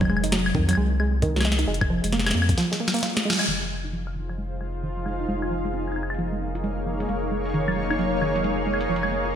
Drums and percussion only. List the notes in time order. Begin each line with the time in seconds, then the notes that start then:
0.01 kick, claves
0.05 claves
0.10 claves
0.17 claves
0.24 closed hi-hat
0.32 snare, closed hi-hat
0.46 claves
0.55 kick
0.69 closed hi-hat, claves
0.71 claves
0.73 claves
0.75 claves
1.00 claves
1.22 kick, closed hi-hat
1.36 snare
1.41 snare, claves
1.45 snare
1.52 snare
1.59 closed hi-hat
1.74 closed hi-hat
1.81 kick, claves
2.04 closed hi-hat
2.12 snare, closed hi-hat
2.19 snare
2.26 snare, claves
2.31 snare
2.42 claves
2.49 kick, closed hi-hat
2.58 snare, closed hi-hat
2.73 snare
2.88 snare
2.94 closed hi-hat
2.96 closed hi-hat
2.98 closed hi-hat
3.01 snare, closed hi-hat
3.03 closed hi-hat
3.10 closed hi-hat
3.13 snare, closed hi-hat
3.30 snare
3.33 snare
3.39 closed hi-hat, claves
3.41 closed hi-hat
3.44 closed hi-hat
3.46 closed hi-hat
3.62 claves
3.84 closed hi-hat
3.93 closed hi-hat
4.07 claves
4.29 closed hi-hat, claves
4.38 closed hi-hat
4.61 claves
4.75 closed hi-hat
4.83 closed hi-hat
5.06 claves
5.20 closed hi-hat
5.28 closed hi-hat
5.42 claves
5.65 closed hi-hat
5.73 closed hi-hat
5.88 claves
5.92 claves
5.96 claves
6.03 claves
6.10 claves
6.14 closed hi-hat
6.19 closed hi-hat
6.55 closed hi-hat
6.64 closed hi-hat
7.00 closed hi-hat
7.09 closed hi-hat
7.45 closed hi-hat
7.50 closed hi-hat
7.54 closed hi-hat
7.61 closed hi-hat
7.68 claves
7.91 closed hi-hat, claves
7.99 closed hi-hat
8.22 claves
8.36 closed hi-hat
8.44 closed hi-hat
8.74 claves
8.81 closed hi-hat
8.96 closed hi-hat
9.03 claves